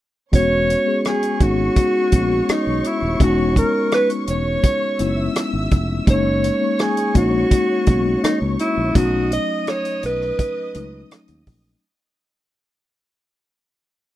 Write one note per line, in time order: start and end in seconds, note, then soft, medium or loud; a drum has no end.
0.32 0.74 E1 medium
0.32 0.82 G#3 medium
0.32 0.82 B3 medium
0.32 0.83 C#4 medium
0.32 0.83 F#4 medium
0.32 4.96 C#5 medium
0.32 1.02 C#5 medium
0.32 4.96 C#6 medium
0.32 kick medium
0.32 closed hi-hat medium
0.70 closed hi-hat medium
0.86 1.36 G#3 medium
0.86 1.36 B3 medium
0.86 1.37 C#4 medium
0.86 1.37 G#4 medium
1.05 1.44 G#4 medium
1.05 cross-stick medium
1.05 closed hi-hat medium
1.23 closed hi-hat soft
1.40 1.68 G#1 medium
1.40 2.06 G#3 medium
1.40 2.07 B3 medium
1.40 2.07 C#4 medium
1.40 2.07 D#4 medium
1.40 2.52 F#4 medium
1.40 kick medium
1.40 closed hi-hat medium
1.76 kick medium
1.76 closed hi-hat medium
2.12 2.40 A#1 medium
2.12 3.11 G#3 medium
2.12 3.11 B3 medium
2.12 3.12 C#4 medium
2.12 3.12 F#4 medium
2.12 kick medium
2.12 closed hi-hat medium
2.49 2.88 D#4 medium
2.49 muted fingered electric bass stroke soft
2.49 cross-stick medium
2.49 closed hi-hat medium
2.67 2.81 B1 medium
2.84 3.21 E4 medium
2.84 closed hi-hat medium
3.02 3.16 D#1 medium
3.20 3.62 E1 medium
3.20 4.52 G#3 medium
3.20 4.52 B3 medium
3.20 4.53 C#4 medium
3.20 4.53 D#4 medium
3.20 3.55 F#4 medium
3.20 kick medium
3.20 closed hi-hat medium
3.56 3.91 A#4 medium
3.56 kick medium
3.56 closed hi-hat medium
3.92 4.10 B4 medium
3.92 cross-stick medium
3.92 closed hi-hat medium
4.10 closed hi-hat soft
4.27 4.56 E1 medium
4.27 5.33 C#5 medium
4.27 closed hi-hat medium
4.64 kick medium
4.64 closed hi-hat medium
4.99 5.28 F#1 medium
4.99 5.99 G#3 medium
4.99 5.99 B3 medium
4.99 5.99 C#4 medium
4.99 5.99 E4 medium
4.99 6.05 E5 medium
4.99 6.05 E6 medium
4.99 closed hi-hat medium
5.36 cross-stick loud
5.36 closed hi-hat medium
5.53 5.67 G#1 medium
5.71 5.99 F1 medium
5.71 kick medium
5.71 closed hi-hat medium
6.07 6.49 F#1 medium
6.07 6.57 G#3 medium
6.07 6.57 A#3 medium
6.07 6.58 C#4 medium
6.07 6.58 D#4 medium
6.07 8.92 C#5 medium
6.07 6.82 C#5 medium
6.07 8.92 C#6 medium
6.07 kick medium
6.07 closed hi-hat medium
6.44 closed hi-hat medium
6.60 7.10 G#3 medium
6.60 7.11 A#3 medium
6.60 7.11 C#4 soft
6.60 7.11 D#4 medium
6.79 7.16 G#4 medium
6.79 cross-stick medium
6.79 closed hi-hat medium
6.97 closed hi-hat soft
7.14 7.43 A#1 medium
7.14 7.81 G#3 medium
7.14 7.81 A#3 medium
7.14 7.82 C#4 medium
7.14 7.82 D#4 medium
7.14 8.20 F#4 medium
7.14 kick medium
7.14 closed hi-hat medium
7.51 kick medium
7.51 closed hi-hat medium
7.86 8.15 B1 medium
7.86 8.86 G#3 medium
7.86 8.87 A#3 medium
7.86 8.87 C#4 medium
7.86 8.87 F#4 medium
7.86 kick medium
7.86 closed hi-hat medium
8.24 8.40 D#4 medium
8.24 muted fingered electric bass stroke soft
8.24 cross-stick loud
8.24 closed hi-hat medium
8.42 8.55 C#2 medium
8.59 8.97 E4 medium
8.59 closed hi-hat medium
8.78 8.91 A#1 medium
8.95 9.37 B1 medium
8.95 10.27 F#3 medium
8.95 10.27 A3 medium
8.95 10.28 C#4 medium
8.95 10.28 D#4 medium
8.95 9.31 F#4 medium
8.95 11.79 D#5 medium
8.95 11.79 D#6 medium
8.95 kick medium
8.95 closed hi-hat medium
9.32 9.71 D#5 medium
9.32 closed hi-hat medium
9.67 10.04 C#5 loud
9.67 cross-stick medium
9.67 closed hi-hat medium
9.85 closed hi-hat soft
10.03 10.31 B1 medium
10.03 11.08 B4 medium
10.03 closed hi-hat medium
10.22 cross-stick soft
10.39 kick medium
10.39 closed hi-hat medium
10.74 11.03 C#2 medium
10.74 11.74 F#3 medium
10.74 11.74 A3 medium
10.74 11.74 C#4 medium
10.74 11.75 D#4 medium
10.74 closed hi-hat medium
11.11 cross-stick loud
11.11 closed hi-hat medium
11.28 11.43 D#2 medium
11.28 closed hi-hat soft
11.47 11.74 A#1 medium
11.47 kick medium
11.47 open hi-hat medium